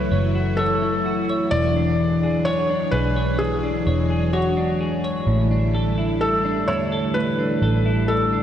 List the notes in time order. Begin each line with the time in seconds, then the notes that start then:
Already playing: E3 F#3 A3 E4 F#4 B4 C#5
0.11 F#1 C#5
0.35 F#4
0.57 A4 C#5
0.82 E4
1.06 F#4
1.30 C#5
1.51 E1 E3 G#3 D4 D5
1.76 D4
2.23 G#4
2.45 C#5
2.70 D4
2.91 B1 G#4 B4
3.16 C#5
3.39 E3 G#4
3.63 D4
3.87 E1 C#5
4.10 G#4
4.33 F#4 C#5
4.57 D4
4.81 G#4
5.04 C#5
5.27 A1 A2 D3 G3 A3 E4
5.51 D4
5.75 A4
5.98 E4
6.21 A4
6.45 D4
6.68 E2 E4 C#5
6.92 A4
7.14 A2 D4 B4
7.39 D4
7.62 A1 A4
7.86 E4
8.08 A4
8.33 D4